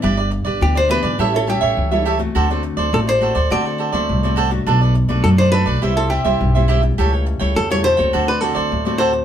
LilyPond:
<<
  \new Staff \with { instrumentName = "Cavaquinho" } { \time 4/4 \key d \mixolydian \tempo 4 = 104 <e' g' b' d''>16 <g' b' d''>16 r16 <g' b' d''>8 <g' b' d''>16 <e' g' b' d''>16 <g' b' d''>16 <g' a' cis'' e''>16 <a' cis'' e''>16 <g' a' cis'' e''>16 <a' cis'' e''>8 <a' cis'' e''>16 <g' a' cis'' e''>16 r16 | <fis' a' c'' d''>16 <a' c'' d''>16 r16 <a' c'' d''>8 <a' c'' d''>16 <fis' a' c'' d''>16 <a' c'' d''>16 <fis' a' c'' d''>16 <a' c'' d''>16 <fis' a' c'' d''>16 <a' c'' d''>8 <a' c'' d''>16 <fis' a' c'' d''>16 r16 | <d' a' b' d''>16 <a' b' d''>16 r16 <a' b' d''>8 <a' b' d''>16 <d' a' b' d''>16 <a' b' d''>16 <e' g' c'' e''>16 <g' c'' e''>16 <e' g' c'' e''>16 <g' c'' e''>8 <g' c'' e''>16 <e' g' c'' e''>16 r16 | <g' a' cis'' g''>16 <a' cis'' g''>16 r16 <a' cis'' g''>8 <a' cis'' g''>16 <g' a' cis'' g''>16 <a' cis'' g''>16 <fis' a' c'' d''>16 <a' c'' d''>16 <fis' a' c'' d''>16 <a' c'' d''>8 <a' c'' d''>16 <fis' a' c'' d''>16 r16 | }
  \new Staff \with { instrumentName = "Hollow-body jazz guitar" } { \time 4/4 \key d \mixolydian r4 g'16 c''16 b'8. a'16 g'4 r8 | r4 a'16 c''8. d''4. r8 | r4 a'16 c''16 b'8. a'16 g'4 r8 | r4 a'16 cis''16 c''8. b'16 a'4 c''8 | }
  \new Staff \with { instrumentName = "Nylon-string guitar" } { \time 4/4 \key d \mixolydian << { <e b d'>16 r8. <e b d'>16 r16 <e b d'>8 <g cis' e'>8 <g cis' e'>8. <g cis' e'>8 <a c' fis'>16~ | <a c' fis'>16 <a c' fis'>8. <a c' fis'>16 r16 <a c' fis'>16 r16 <a c' fis'>8. <a c' fis'>8 <a c' fis'>8 <a d' fis'>16~ | <a d' fis'>16 r8 <a d' fis'>8. <a d' fis'>8 <g c' e'>8. <g c' e'>8 <g c' e'>8. | <g a e'>8. <g a e'>8 <g a e'>8 <a c' fis'>8. <a c' fis'>8. <a c' fis'>8. | } \\ { g,4 d4 a,4 e4 | d4 a,4 d4 a,4 | b,4 fis4 c4 g,4 | cis4 cis4 d4 a,4 | } >> }
  \new Staff \with { instrumentName = "Upright bass" } { \clef bass \time 4/4 \key d \mixolydian g,,8. g,,16 d,8. aes,,16 a,,8. a,,16 cis,4 | d,8. d,16 a,,8. d,16 d8. d,16 c,4 | b,,8. r16 fis,8. b,,16 c,8. c,16 b,,4 | cis,8. cis,16 e,8. cis,16 d,8. d,16 d,4 | }
>>